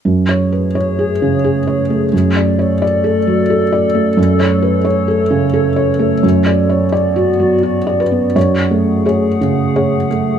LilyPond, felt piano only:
\new Staff \with { instrumentName = "Felt piano" } { \time 3/4 \key fis \minor \tempo 4 = 87 << { r2. | r2. | r2. | r2 r8 b'8 |
cis''2. | } \\ { \tuplet 3/2 { fis,8 cis''8 b'8 cis''8 gis'8 cis8 gis'8 cis''8 a8 } | \tuplet 3/2 { fis,8 d''8 cis''8 d''8 a'8 fis8 a'8 d''8 a8 } | \tuplet 3/2 { fis,8 cis''8 b'8 cis''8 a'8 cis8 a'8 cis''8 a8 } | \tuplet 3/2 { fis,8 d''8 cis''8 d''8 fis'8 fis8 fis'8 d''8 b8 } |
fis,8 a8 <gis' cis''>8 cis8 <gis' cis''>8 a8 | } >> }